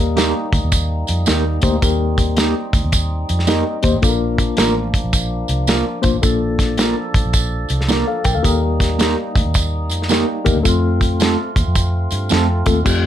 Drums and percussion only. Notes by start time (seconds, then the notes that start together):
0.17 snare, closed hi-hat, tambourine
0.53 kick, closed hi-hat, tambourine
0.72 kick, closed hi-hat, tambourine
1.07 closed hi-hat, tambourine
1.26 snare, closed hi-hat, tambourine
1.62 kick, closed hi-hat, tambourine
1.82 kick, closed hi-hat, tambourine
2.18 kick, closed hi-hat, tambourine
2.37 snare, closed hi-hat, tambourine
2.73 kick, closed hi-hat, tambourine
2.92 kick, closed hi-hat, tambourine
3.29 closed hi-hat, tambourine
3.39 snare
3.47 snare, closed hi-hat, tambourine
3.83 kick, closed hi-hat, tambourine
4.02 kick, closed hi-hat, tambourine
4.38 kick, closed hi-hat, tambourine
4.57 snare, closed hi-hat, tambourine
4.94 kick, closed hi-hat, tambourine
5.13 kick, closed hi-hat, tambourine
5.48 closed hi-hat, tambourine
5.67 snare, closed hi-hat, tambourine
6.03 kick, closed hi-hat, tambourine
6.23 kick, closed hi-hat, tambourine
6.59 kick, snare, closed hi-hat, tambourine
6.78 snare, closed hi-hat, tambourine
7.14 kick, closed hi-hat, tambourine
7.33 kick, closed hi-hat, tambourine
7.69 closed hi-hat, tambourine
7.81 snare
7.89 snare, closed hi-hat, tambourine
8.24 kick, closed hi-hat, tambourine
8.44 kick, closed hi-hat, tambourine
8.80 kick, snare, closed hi-hat, tambourine
8.99 snare, closed hi-hat, tambourine
9.36 kick, closed hi-hat, tambourine
9.54 kick, closed hi-hat, tambourine
9.90 closed hi-hat, tambourine
10.02 snare
10.09 snare, closed hi-hat, tambourine
10.46 kick, closed hi-hat, tambourine
10.65 kick, closed hi-hat, tambourine
11.01 kick, closed hi-hat, tambourine
11.20 snare, closed hi-hat, tambourine
11.56 kick, closed hi-hat, tambourine
11.75 kick, closed hi-hat, tambourine
12.11 closed hi-hat, tambourine
12.29 snare, closed hi-hat, tambourine
12.66 kick, closed hi-hat, tambourine
12.86 kick, crash, tambourine